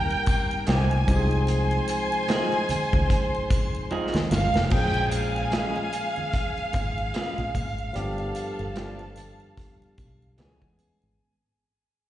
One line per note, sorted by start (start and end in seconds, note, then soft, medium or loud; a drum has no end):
0.00 1.03 G3 medium
0.00 1.04 A#3 medium
0.00 1.04 C4 medium
0.00 1.07 D#4 medium
0.00 0.64 A#4 loud
0.00 1.04 A#4 medium
0.00 0.64 G5 loud
0.00 0.64 A#5 loud
0.11 muted triangle medium
0.26 kick loud
0.26 closed hi-hat medium
0.26 triangle medium
0.51 muted triangle soft
0.67 1.03 C2 medium
0.67 0.92 D#3 medium
0.67 0.92 A#3 medium
0.67 0.92 C4 loud
0.67 0.93 G4 medium
0.67 1.49 G#5 medium
0.67 snare loud
0.67 closed hi-hat medium
0.67 high conga medium
0.67 muted triangle soft
0.91 muted triangle medium
1.07 1.78 C2 medium
1.07 4.27 F3 medium
1.07 4.27 G#3 medium
1.07 4.27 C4 medium
1.07 4.28 D#4 medium
1.07 1.16 G4 medium
1.07 4.28 C5 medium
1.07 4.28 C6 medium
1.07 kick medium
1.07 closed hi-hat medium
1.07 high conga medium
1.07 triangle medium
1.16 4.31 G#4 medium
1.31 muted triangle medium
1.47 3.88 G#5 medium
1.47 closed hi-hat medium
1.47 muted conga soft
1.47 muted triangle soft
1.71 muted triangle medium
1.88 closed hi-hat medium
1.88 triangle medium
2.12 muted triangle medium
2.28 2.54 F3 medium
2.28 2.54 C4 medium
2.28 2.54 D#4 medium
2.28 2.54 G#4 medium
2.28 snare loud
2.28 closed hi-hat medium
2.28 high conga medium
2.28 muted triangle soft
2.52 muted triangle soft
2.69 muted fingered electric bass stroke soft
2.69 closed hi-hat medium
2.69 low conga medium
2.69 triangle medium
2.93 3.08 C#2 medium
2.93 kick medium
2.93 muted triangle soft
3.10 kick medium
3.10 closed hi-hat medium
3.10 muted conga medium
3.10 muted triangle soft
3.35 muted triangle soft
3.50 kick loud
3.50 closed hi-hat medium
3.50 triangle medium
3.75 muted triangle medium
3.91 4.16 F3 medium
3.91 4.16 C4 medium
3.91 4.16 D#4 medium
3.91 4.16 G#4 medium
3.91 high conga medium
3.91 muted triangle medium
4.14 4.29 D#2 medium
4.14 snare medium
4.14 muted triangle medium
4.31 4.52 G1 medium
4.31 4.70 F5 medium
4.31 snare medium
4.31 high conga medium
4.31 triangle medium
4.54 4.69 F1 medium
4.54 snare medium
4.54 muted triangle soft
4.70 5.43 A#1 loud
4.70 7.90 F3 medium
4.70 7.91 G#3 medium
4.70 7.91 A#3 medium
4.70 7.91 C#4 medium
4.70 7.51 G#4 medium
4.70 7.92 G#4 medium
4.70 5.13 G5 loud
4.70 7.51 G#5 loud
4.70 kick loud
4.70 crash medium
4.70 muted conga soft
4.70 muted triangle medium
4.94 muted triangle medium
5.12 10.35 F5 loud
5.12 closed hi-hat medium
5.12 triangle medium
5.36 muted triangle medium
5.51 5.77 G#3 medium
5.51 5.78 C#4 medium
5.51 5.78 F4 medium
5.51 5.78 G#4 medium
5.51 snare loud
5.51 closed hi-hat medium
5.51 high conga medium
5.51 muted triangle soft
5.76 muted triangle soft
5.93 closed hi-hat medium
5.93 triangle medium
6.16 low conga medium
6.16 muted triangle soft
6.33 kick medium
6.33 closed hi-hat medium
6.33 muted conga medium
6.33 muted triangle soft
6.58 muted fingered electric bass stroke soft
6.58 muted triangle soft
6.73 7.09 G#1 medium
6.73 kick loud
6.73 closed hi-hat medium
6.73 muted conga soft
6.73 low conga medium
6.73 triangle medium
6.98 muted triangle soft
7.14 7.39 G#3 medium
7.14 7.39 C#4 medium
7.14 7.40 F4 medium
7.14 7.40 G#4 medium
7.14 snare loud
7.14 closed hi-hat medium
7.14 high conga medium
7.14 muted triangle medium
7.38 7.55 A#1 medium
7.38 muted triangle medium
7.55 7.90 G#1 medium
7.55 kick medium
7.55 closed hi-hat medium
7.55 high conga medium
7.55 triangle medium
7.78 muted triangle medium
7.93 8.31 G1 loud
7.93 10.33 F3 medium
7.93 10.34 G3 medium
7.93 8.02 A3 medium
7.93 10.34 D4 medium
7.93 10.34 G4 medium
7.93 9.94 A4 medium
7.93 9.94 A5 loud
7.93 closed hi-hat medium
7.93 muted conga soft
7.93 muted triangle soft
8.01 10.37 B3 medium
8.18 muted triangle medium
8.35 closed hi-hat medium
8.35 triangle medium
8.59 9.30 G1 medium
8.59 muted triangle medium
8.76 9.01 F3 medium
8.76 9.01 B3 medium
8.76 9.01 D4 medium
8.76 9.02 G4 medium
8.76 snare loud
8.76 closed hi-hat medium
8.76 high conga medium
8.76 muted triangle soft
8.99 muted triangle soft
9.16 closed hi-hat medium
9.16 low conga medium
9.16 triangle medium
9.40 muted triangle soft
9.57 kick medium
9.57 closed hi-hat medium
9.57 muted conga medium
9.57 muted triangle soft
9.81 muted fingered electric bass stroke soft
9.81 muted triangle soft
9.98 10.33 B1 medium
9.98 kick loud
9.98 closed hi-hat medium
9.98 muted conga soft
9.98 triangle medium
10.22 muted triangle soft
10.37 10.59 C#2 medium
10.37 11.19 E3 medium
10.37 10.63 E3 medium
10.37 11.19 G#3 medium
10.37 11.19 B3 medium
10.37 10.63 B3 medium
10.37 11.19 C#4 medium
10.37 10.63 C#4 medium
10.37 10.78 G#4 medium
10.37 11.19 G#4 medium
10.37 10.64 G#4 medium
10.37 10.78 G#5 medium
10.37 snare loud
10.37 closed hi-hat medium
10.37 high conga medium
10.37 muted triangle medium
10.62 10.77 E2 medium
10.62 kick medium
10.62 muted triangle medium
10.79 closed hi-hat medium
10.79 high conga medium
10.79 triangle medium
11.02 11.18 G#1 medium
11.02 muted triangle soft